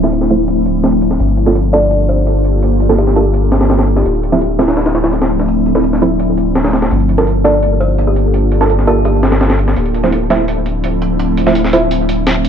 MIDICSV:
0, 0, Header, 1, 6, 480
1, 0, Start_track
1, 0, Key_signature, -2, "minor"
1, 0, Tempo, 357143
1, 1610, Time_signature, 4, 2, 24, 8
1, 16781, End_track
2, 0, Start_track
2, 0, Title_t, "Kalimba"
2, 0, Program_c, 0, 108
2, 2325, Note_on_c, 0, 74, 86
2, 2615, Note_off_c, 0, 74, 0
2, 2808, Note_on_c, 0, 72, 81
2, 3097, Note_off_c, 0, 72, 0
2, 4008, Note_on_c, 0, 67, 91
2, 4225, Note_off_c, 0, 67, 0
2, 4248, Note_on_c, 0, 67, 84
2, 4537, Note_off_c, 0, 67, 0
2, 5327, Note_on_c, 0, 67, 88
2, 5496, Note_off_c, 0, 67, 0
2, 10005, Note_on_c, 0, 74, 87
2, 10296, Note_off_c, 0, 74, 0
2, 10488, Note_on_c, 0, 72, 84
2, 10777, Note_off_c, 0, 72, 0
2, 10850, Note_on_c, 0, 67, 87
2, 11138, Note_off_c, 0, 67, 0
2, 11928, Note_on_c, 0, 67, 88
2, 12145, Note_off_c, 0, 67, 0
2, 12164, Note_on_c, 0, 67, 85
2, 12839, Note_off_c, 0, 67, 0
2, 16781, End_track
3, 0, Start_track
3, 0, Title_t, "Ambient pad"
3, 0, Program_c, 1, 92
3, 0, Note_on_c, 1, 53, 89
3, 0, Note_on_c, 1, 57, 78
3, 0, Note_on_c, 1, 60, 79
3, 0, Note_on_c, 1, 62, 80
3, 0, Note_on_c, 1, 64, 91
3, 1577, Note_off_c, 1, 64, 0
3, 1578, Note_off_c, 1, 53, 0
3, 1578, Note_off_c, 1, 57, 0
3, 1578, Note_off_c, 1, 62, 0
3, 1579, Note_off_c, 1, 60, 0
3, 1607, Note_on_c, 1, 62, 79
3, 1608, Note_on_c, 1, 65, 77
3, 1608, Note_on_c, 1, 67, 80
3, 1609, Note_on_c, 1, 58, 88
3, 1609, Note_on_c, 1, 69, 94
3, 5420, Note_off_c, 1, 62, 0
3, 5420, Note_off_c, 1, 65, 0
3, 5420, Note_off_c, 1, 67, 0
3, 5421, Note_off_c, 1, 58, 0
3, 5421, Note_off_c, 1, 69, 0
3, 5448, Note_on_c, 1, 62, 80
3, 5449, Note_on_c, 1, 64, 96
3, 5450, Note_on_c, 1, 53, 85
3, 5450, Note_on_c, 1, 57, 80
3, 5450, Note_on_c, 1, 60, 79
3, 9260, Note_off_c, 1, 62, 0
3, 9261, Note_off_c, 1, 53, 0
3, 9261, Note_off_c, 1, 57, 0
3, 9261, Note_off_c, 1, 60, 0
3, 9261, Note_off_c, 1, 64, 0
3, 9291, Note_on_c, 1, 67, 80
3, 9292, Note_on_c, 1, 58, 87
3, 9293, Note_on_c, 1, 62, 79
3, 9293, Note_on_c, 1, 69, 92
3, 9294, Note_on_c, 1, 65, 76
3, 13102, Note_off_c, 1, 58, 0
3, 13102, Note_off_c, 1, 62, 0
3, 13102, Note_off_c, 1, 67, 0
3, 13103, Note_off_c, 1, 65, 0
3, 13103, Note_off_c, 1, 69, 0
3, 13127, Note_on_c, 1, 53, 84
3, 13128, Note_on_c, 1, 57, 81
3, 13128, Note_on_c, 1, 64, 98
3, 13129, Note_on_c, 1, 60, 80
3, 13130, Note_on_c, 1, 62, 78
3, 16781, Note_off_c, 1, 53, 0
3, 16781, Note_off_c, 1, 57, 0
3, 16781, Note_off_c, 1, 60, 0
3, 16781, Note_off_c, 1, 62, 0
3, 16781, Note_off_c, 1, 64, 0
3, 16781, End_track
4, 0, Start_track
4, 0, Title_t, "Synth stab"
4, 0, Program_c, 2, 62
4, 49, Note_on_c, 2, 57, 66
4, 49, Note_on_c, 2, 60, 63
4, 50, Note_on_c, 2, 64, 81
4, 51, Note_on_c, 2, 53, 70
4, 189, Note_off_c, 2, 57, 0
4, 189, Note_off_c, 2, 60, 0
4, 190, Note_off_c, 2, 53, 0
4, 190, Note_off_c, 2, 64, 0
4, 409, Note_on_c, 2, 53, 84
4, 409, Note_on_c, 2, 57, 77
4, 409, Note_on_c, 2, 64, 92
4, 410, Note_on_c, 2, 60, 78
4, 550, Note_off_c, 2, 53, 0
4, 550, Note_off_c, 2, 57, 0
4, 550, Note_off_c, 2, 60, 0
4, 550, Note_off_c, 2, 64, 0
4, 1972, Note_on_c, 2, 58, 73
4, 1972, Note_on_c, 2, 62, 67
4, 1972, Note_on_c, 2, 65, 66
4, 1972, Note_on_c, 2, 69, 77
4, 2110, Note_off_c, 2, 58, 0
4, 2110, Note_off_c, 2, 62, 0
4, 2110, Note_off_c, 2, 65, 0
4, 2110, Note_off_c, 2, 69, 0
4, 2331, Note_on_c, 2, 58, 80
4, 2332, Note_on_c, 2, 62, 78
4, 2333, Note_on_c, 2, 65, 77
4, 2333, Note_on_c, 2, 69, 93
4, 2471, Note_off_c, 2, 58, 0
4, 2471, Note_off_c, 2, 62, 0
4, 2472, Note_off_c, 2, 65, 0
4, 2472, Note_off_c, 2, 69, 0
4, 3888, Note_on_c, 2, 58, 72
4, 3888, Note_on_c, 2, 62, 66
4, 3888, Note_on_c, 2, 69, 80
4, 3889, Note_on_c, 2, 65, 65
4, 4028, Note_off_c, 2, 62, 0
4, 4029, Note_off_c, 2, 58, 0
4, 4029, Note_off_c, 2, 65, 0
4, 4029, Note_off_c, 2, 69, 0
4, 4248, Note_on_c, 2, 58, 85
4, 4249, Note_on_c, 2, 62, 78
4, 4249, Note_on_c, 2, 65, 80
4, 4249, Note_on_c, 2, 69, 91
4, 4389, Note_off_c, 2, 58, 0
4, 4390, Note_off_c, 2, 62, 0
4, 4390, Note_off_c, 2, 65, 0
4, 4390, Note_off_c, 2, 69, 0
4, 5809, Note_on_c, 2, 53, 68
4, 5809, Note_on_c, 2, 57, 65
4, 5809, Note_on_c, 2, 64, 80
4, 5810, Note_on_c, 2, 60, 66
4, 5949, Note_off_c, 2, 53, 0
4, 5949, Note_off_c, 2, 57, 0
4, 5949, Note_off_c, 2, 60, 0
4, 5949, Note_off_c, 2, 64, 0
4, 6166, Note_on_c, 2, 57, 81
4, 6166, Note_on_c, 2, 60, 79
4, 6166, Note_on_c, 2, 64, 92
4, 6167, Note_on_c, 2, 53, 83
4, 6308, Note_off_c, 2, 57, 0
4, 6308, Note_off_c, 2, 60, 0
4, 6308, Note_off_c, 2, 64, 0
4, 6309, Note_off_c, 2, 53, 0
4, 7729, Note_on_c, 2, 53, 75
4, 7730, Note_on_c, 2, 57, 66
4, 7730, Note_on_c, 2, 60, 64
4, 7730, Note_on_c, 2, 64, 76
4, 7869, Note_off_c, 2, 53, 0
4, 7869, Note_off_c, 2, 57, 0
4, 7869, Note_off_c, 2, 60, 0
4, 7869, Note_off_c, 2, 64, 0
4, 8090, Note_on_c, 2, 53, 85
4, 8090, Note_on_c, 2, 57, 75
4, 8090, Note_on_c, 2, 64, 94
4, 8092, Note_on_c, 2, 60, 77
4, 8230, Note_off_c, 2, 53, 0
4, 8230, Note_off_c, 2, 57, 0
4, 8230, Note_off_c, 2, 64, 0
4, 8231, Note_off_c, 2, 60, 0
4, 9649, Note_on_c, 2, 62, 63
4, 9650, Note_on_c, 2, 58, 71
4, 9650, Note_on_c, 2, 65, 65
4, 9650, Note_on_c, 2, 69, 80
4, 9789, Note_off_c, 2, 62, 0
4, 9789, Note_off_c, 2, 65, 0
4, 9790, Note_off_c, 2, 58, 0
4, 9790, Note_off_c, 2, 69, 0
4, 10007, Note_on_c, 2, 62, 76
4, 10008, Note_on_c, 2, 58, 84
4, 10008, Note_on_c, 2, 65, 74
4, 10009, Note_on_c, 2, 69, 97
4, 10149, Note_off_c, 2, 58, 0
4, 10149, Note_off_c, 2, 62, 0
4, 10149, Note_off_c, 2, 65, 0
4, 10150, Note_off_c, 2, 69, 0
4, 11570, Note_on_c, 2, 65, 67
4, 11571, Note_on_c, 2, 58, 68
4, 11571, Note_on_c, 2, 62, 67
4, 11571, Note_on_c, 2, 69, 80
4, 11709, Note_off_c, 2, 65, 0
4, 11710, Note_off_c, 2, 58, 0
4, 11710, Note_off_c, 2, 62, 0
4, 11710, Note_off_c, 2, 69, 0
4, 11927, Note_on_c, 2, 58, 85
4, 11927, Note_on_c, 2, 62, 78
4, 11927, Note_on_c, 2, 65, 77
4, 11927, Note_on_c, 2, 69, 94
4, 12069, Note_off_c, 2, 58, 0
4, 12069, Note_off_c, 2, 62, 0
4, 12069, Note_off_c, 2, 65, 0
4, 12069, Note_off_c, 2, 69, 0
4, 13488, Note_on_c, 2, 64, 77
4, 13489, Note_on_c, 2, 53, 70
4, 13489, Note_on_c, 2, 57, 65
4, 13489, Note_on_c, 2, 60, 67
4, 13629, Note_off_c, 2, 53, 0
4, 13629, Note_off_c, 2, 57, 0
4, 13629, Note_off_c, 2, 60, 0
4, 13629, Note_off_c, 2, 64, 0
4, 13846, Note_on_c, 2, 53, 85
4, 13846, Note_on_c, 2, 57, 81
4, 13847, Note_on_c, 2, 60, 78
4, 13847, Note_on_c, 2, 64, 91
4, 13988, Note_off_c, 2, 53, 0
4, 13988, Note_off_c, 2, 57, 0
4, 13989, Note_off_c, 2, 60, 0
4, 13989, Note_off_c, 2, 64, 0
4, 15410, Note_on_c, 2, 57, 68
4, 15411, Note_on_c, 2, 53, 74
4, 15412, Note_on_c, 2, 60, 68
4, 15412, Note_on_c, 2, 64, 81
4, 15549, Note_off_c, 2, 57, 0
4, 15550, Note_off_c, 2, 53, 0
4, 15550, Note_off_c, 2, 60, 0
4, 15550, Note_off_c, 2, 64, 0
4, 15767, Note_on_c, 2, 53, 88
4, 15767, Note_on_c, 2, 57, 77
4, 15767, Note_on_c, 2, 60, 78
4, 15767, Note_on_c, 2, 64, 92
4, 15909, Note_off_c, 2, 53, 0
4, 15909, Note_off_c, 2, 57, 0
4, 15909, Note_off_c, 2, 60, 0
4, 15909, Note_off_c, 2, 64, 0
4, 16781, End_track
5, 0, Start_track
5, 0, Title_t, "Sub bass"
5, 0, Program_c, 3, 38
5, 0, Note_on_c, 3, 26, 85
5, 1586, Note_off_c, 3, 26, 0
5, 1607, Note_on_c, 3, 31, 87
5, 5425, Note_off_c, 3, 31, 0
5, 5450, Note_on_c, 3, 26, 83
5, 9266, Note_off_c, 3, 26, 0
5, 9290, Note_on_c, 3, 31, 83
5, 13106, Note_off_c, 3, 31, 0
5, 13132, Note_on_c, 3, 26, 83
5, 16781, Note_off_c, 3, 26, 0
5, 16781, End_track
6, 0, Start_track
6, 0, Title_t, "Drums"
6, 46, Note_on_c, 9, 38, 49
6, 165, Note_on_c, 9, 42, 85
6, 180, Note_off_c, 9, 38, 0
6, 286, Note_on_c, 9, 38, 40
6, 299, Note_off_c, 9, 42, 0
6, 404, Note_on_c, 9, 42, 67
6, 421, Note_off_c, 9, 38, 0
6, 538, Note_off_c, 9, 42, 0
6, 644, Note_on_c, 9, 42, 84
6, 778, Note_off_c, 9, 42, 0
6, 884, Note_on_c, 9, 42, 63
6, 1018, Note_off_c, 9, 42, 0
6, 1124, Note_on_c, 9, 38, 96
6, 1124, Note_on_c, 9, 42, 73
6, 1258, Note_off_c, 9, 38, 0
6, 1258, Note_off_c, 9, 42, 0
6, 1368, Note_on_c, 9, 42, 64
6, 1488, Note_on_c, 9, 38, 46
6, 1502, Note_off_c, 9, 42, 0
6, 1605, Note_on_c, 9, 42, 86
6, 1622, Note_off_c, 9, 38, 0
6, 1726, Note_off_c, 9, 42, 0
6, 1726, Note_on_c, 9, 42, 41
6, 1846, Note_off_c, 9, 42, 0
6, 1846, Note_on_c, 9, 42, 63
6, 1967, Note_on_c, 9, 38, 49
6, 1980, Note_off_c, 9, 42, 0
6, 2087, Note_on_c, 9, 42, 88
6, 2101, Note_off_c, 9, 38, 0
6, 2222, Note_off_c, 9, 42, 0
6, 2329, Note_on_c, 9, 38, 50
6, 2329, Note_on_c, 9, 42, 66
6, 2463, Note_off_c, 9, 38, 0
6, 2463, Note_off_c, 9, 42, 0
6, 2567, Note_on_c, 9, 42, 82
6, 2702, Note_off_c, 9, 42, 0
6, 2808, Note_on_c, 9, 42, 64
6, 2943, Note_off_c, 9, 42, 0
6, 3047, Note_on_c, 9, 42, 81
6, 3182, Note_off_c, 9, 42, 0
6, 3286, Note_on_c, 9, 42, 68
6, 3421, Note_off_c, 9, 42, 0
6, 3529, Note_on_c, 9, 42, 89
6, 3663, Note_off_c, 9, 42, 0
6, 3768, Note_on_c, 9, 42, 64
6, 3891, Note_on_c, 9, 38, 51
6, 3902, Note_off_c, 9, 42, 0
6, 4006, Note_on_c, 9, 42, 86
6, 4025, Note_off_c, 9, 38, 0
6, 4128, Note_on_c, 9, 38, 39
6, 4141, Note_off_c, 9, 42, 0
6, 4247, Note_on_c, 9, 42, 68
6, 4262, Note_off_c, 9, 38, 0
6, 4381, Note_off_c, 9, 42, 0
6, 4487, Note_on_c, 9, 42, 82
6, 4621, Note_off_c, 9, 42, 0
6, 4728, Note_on_c, 9, 38, 101
6, 4728, Note_on_c, 9, 42, 73
6, 4849, Note_off_c, 9, 38, 0
6, 4849, Note_off_c, 9, 42, 0
6, 4849, Note_on_c, 9, 38, 101
6, 4849, Note_on_c, 9, 42, 81
6, 4969, Note_off_c, 9, 38, 0
6, 4969, Note_off_c, 9, 42, 0
6, 4969, Note_on_c, 9, 38, 103
6, 4969, Note_on_c, 9, 42, 77
6, 5089, Note_off_c, 9, 38, 0
6, 5089, Note_off_c, 9, 42, 0
6, 5089, Note_on_c, 9, 38, 97
6, 5089, Note_on_c, 9, 42, 73
6, 5210, Note_off_c, 9, 42, 0
6, 5210, Note_on_c, 9, 42, 65
6, 5223, Note_off_c, 9, 38, 0
6, 5331, Note_on_c, 9, 38, 46
6, 5344, Note_off_c, 9, 42, 0
6, 5451, Note_on_c, 9, 42, 86
6, 5466, Note_off_c, 9, 38, 0
6, 5574, Note_off_c, 9, 42, 0
6, 5574, Note_on_c, 9, 42, 42
6, 5690, Note_off_c, 9, 42, 0
6, 5690, Note_on_c, 9, 42, 65
6, 5811, Note_on_c, 9, 38, 49
6, 5825, Note_off_c, 9, 42, 0
6, 5930, Note_on_c, 9, 42, 87
6, 5945, Note_off_c, 9, 38, 0
6, 6065, Note_off_c, 9, 42, 0
6, 6171, Note_on_c, 9, 38, 103
6, 6171, Note_on_c, 9, 42, 74
6, 6291, Note_off_c, 9, 38, 0
6, 6291, Note_off_c, 9, 42, 0
6, 6291, Note_on_c, 9, 38, 103
6, 6291, Note_on_c, 9, 42, 75
6, 6409, Note_off_c, 9, 38, 0
6, 6409, Note_off_c, 9, 42, 0
6, 6409, Note_on_c, 9, 38, 100
6, 6409, Note_on_c, 9, 42, 76
6, 6530, Note_off_c, 9, 38, 0
6, 6530, Note_off_c, 9, 42, 0
6, 6530, Note_on_c, 9, 38, 99
6, 6530, Note_on_c, 9, 42, 77
6, 6649, Note_off_c, 9, 38, 0
6, 6649, Note_off_c, 9, 42, 0
6, 6649, Note_on_c, 9, 38, 94
6, 6649, Note_on_c, 9, 42, 72
6, 6771, Note_off_c, 9, 38, 0
6, 6771, Note_off_c, 9, 42, 0
6, 6771, Note_on_c, 9, 38, 104
6, 6771, Note_on_c, 9, 42, 74
6, 6891, Note_off_c, 9, 38, 0
6, 6891, Note_off_c, 9, 42, 0
6, 6891, Note_on_c, 9, 38, 44
6, 6891, Note_on_c, 9, 42, 60
6, 7010, Note_off_c, 9, 38, 0
6, 7010, Note_off_c, 9, 42, 0
6, 7010, Note_on_c, 9, 38, 102
6, 7010, Note_on_c, 9, 42, 79
6, 7144, Note_off_c, 9, 38, 0
6, 7144, Note_off_c, 9, 42, 0
6, 7251, Note_on_c, 9, 38, 42
6, 7251, Note_on_c, 9, 42, 57
6, 7370, Note_off_c, 9, 42, 0
6, 7370, Note_on_c, 9, 42, 85
6, 7385, Note_off_c, 9, 38, 0
6, 7504, Note_off_c, 9, 42, 0
6, 7609, Note_on_c, 9, 42, 64
6, 7729, Note_on_c, 9, 38, 53
6, 7743, Note_off_c, 9, 42, 0
6, 7848, Note_on_c, 9, 42, 86
6, 7864, Note_off_c, 9, 38, 0
6, 7972, Note_on_c, 9, 38, 41
6, 7982, Note_off_c, 9, 42, 0
6, 8090, Note_on_c, 9, 42, 64
6, 8106, Note_off_c, 9, 38, 0
6, 8225, Note_off_c, 9, 42, 0
6, 8327, Note_on_c, 9, 42, 84
6, 8462, Note_off_c, 9, 42, 0
6, 8569, Note_on_c, 9, 42, 65
6, 8703, Note_off_c, 9, 42, 0
6, 8809, Note_on_c, 9, 38, 103
6, 8809, Note_on_c, 9, 42, 77
6, 8930, Note_off_c, 9, 38, 0
6, 8930, Note_off_c, 9, 42, 0
6, 8930, Note_on_c, 9, 38, 104
6, 8930, Note_on_c, 9, 42, 77
6, 9048, Note_off_c, 9, 38, 0
6, 9048, Note_off_c, 9, 42, 0
6, 9048, Note_on_c, 9, 38, 96
6, 9048, Note_on_c, 9, 42, 74
6, 9170, Note_off_c, 9, 38, 0
6, 9170, Note_off_c, 9, 42, 0
6, 9170, Note_on_c, 9, 38, 98
6, 9170, Note_on_c, 9, 42, 70
6, 9289, Note_off_c, 9, 42, 0
6, 9289, Note_on_c, 9, 42, 90
6, 9304, Note_off_c, 9, 38, 0
6, 9410, Note_off_c, 9, 42, 0
6, 9410, Note_on_c, 9, 42, 43
6, 9530, Note_off_c, 9, 42, 0
6, 9530, Note_on_c, 9, 42, 65
6, 9651, Note_on_c, 9, 38, 50
6, 9664, Note_off_c, 9, 42, 0
6, 9772, Note_on_c, 9, 42, 82
6, 9786, Note_off_c, 9, 38, 0
6, 9906, Note_off_c, 9, 42, 0
6, 10010, Note_on_c, 9, 38, 51
6, 10010, Note_on_c, 9, 42, 67
6, 10145, Note_off_c, 9, 38, 0
6, 10145, Note_off_c, 9, 42, 0
6, 10251, Note_on_c, 9, 42, 81
6, 10385, Note_off_c, 9, 42, 0
6, 10491, Note_on_c, 9, 42, 61
6, 10626, Note_off_c, 9, 42, 0
6, 10731, Note_on_c, 9, 42, 86
6, 10865, Note_off_c, 9, 42, 0
6, 10972, Note_on_c, 9, 42, 66
6, 11106, Note_off_c, 9, 42, 0
6, 11209, Note_on_c, 9, 42, 90
6, 11343, Note_off_c, 9, 42, 0
6, 11447, Note_on_c, 9, 42, 65
6, 11569, Note_on_c, 9, 38, 52
6, 11582, Note_off_c, 9, 42, 0
6, 11688, Note_on_c, 9, 42, 83
6, 11703, Note_off_c, 9, 38, 0
6, 11809, Note_on_c, 9, 38, 43
6, 11823, Note_off_c, 9, 42, 0
6, 11926, Note_on_c, 9, 42, 66
6, 11944, Note_off_c, 9, 38, 0
6, 12060, Note_off_c, 9, 42, 0
6, 12165, Note_on_c, 9, 42, 80
6, 12299, Note_off_c, 9, 42, 0
6, 12406, Note_on_c, 9, 38, 97
6, 12406, Note_on_c, 9, 42, 73
6, 12525, Note_off_c, 9, 38, 0
6, 12525, Note_off_c, 9, 42, 0
6, 12525, Note_on_c, 9, 38, 98
6, 12525, Note_on_c, 9, 42, 78
6, 12645, Note_off_c, 9, 38, 0
6, 12645, Note_off_c, 9, 42, 0
6, 12645, Note_on_c, 9, 38, 100
6, 12645, Note_on_c, 9, 42, 74
6, 12764, Note_off_c, 9, 38, 0
6, 12764, Note_off_c, 9, 42, 0
6, 12764, Note_on_c, 9, 38, 105
6, 12764, Note_on_c, 9, 42, 77
6, 12887, Note_off_c, 9, 42, 0
6, 12887, Note_on_c, 9, 42, 65
6, 12899, Note_off_c, 9, 38, 0
6, 13007, Note_on_c, 9, 38, 48
6, 13021, Note_off_c, 9, 42, 0
6, 13123, Note_on_c, 9, 42, 89
6, 13141, Note_off_c, 9, 38, 0
6, 13247, Note_off_c, 9, 42, 0
6, 13247, Note_on_c, 9, 42, 44
6, 13366, Note_off_c, 9, 42, 0
6, 13366, Note_on_c, 9, 42, 63
6, 13487, Note_on_c, 9, 38, 49
6, 13500, Note_off_c, 9, 42, 0
6, 13607, Note_on_c, 9, 42, 84
6, 13621, Note_off_c, 9, 38, 0
6, 13741, Note_off_c, 9, 42, 0
6, 13846, Note_on_c, 9, 38, 51
6, 13846, Note_on_c, 9, 42, 69
6, 13981, Note_off_c, 9, 38, 0
6, 13981, Note_off_c, 9, 42, 0
6, 14086, Note_on_c, 9, 42, 85
6, 14221, Note_off_c, 9, 42, 0
6, 14326, Note_on_c, 9, 42, 65
6, 14460, Note_off_c, 9, 42, 0
6, 14565, Note_on_c, 9, 42, 85
6, 14700, Note_off_c, 9, 42, 0
6, 14808, Note_on_c, 9, 42, 66
6, 14942, Note_off_c, 9, 42, 0
6, 15045, Note_on_c, 9, 42, 91
6, 15180, Note_off_c, 9, 42, 0
6, 15287, Note_on_c, 9, 42, 64
6, 15409, Note_on_c, 9, 38, 51
6, 15422, Note_off_c, 9, 42, 0
6, 15526, Note_on_c, 9, 42, 88
6, 15543, Note_off_c, 9, 38, 0
6, 15650, Note_on_c, 9, 38, 42
6, 15660, Note_off_c, 9, 42, 0
6, 15766, Note_on_c, 9, 42, 66
6, 15785, Note_off_c, 9, 38, 0
6, 15900, Note_off_c, 9, 42, 0
6, 16007, Note_on_c, 9, 42, 86
6, 16142, Note_off_c, 9, 42, 0
6, 16248, Note_on_c, 9, 42, 66
6, 16382, Note_off_c, 9, 42, 0
6, 16487, Note_on_c, 9, 38, 98
6, 16487, Note_on_c, 9, 42, 74
6, 16621, Note_off_c, 9, 38, 0
6, 16621, Note_off_c, 9, 42, 0
6, 16728, Note_on_c, 9, 42, 64
6, 16781, Note_off_c, 9, 42, 0
6, 16781, End_track
0, 0, End_of_file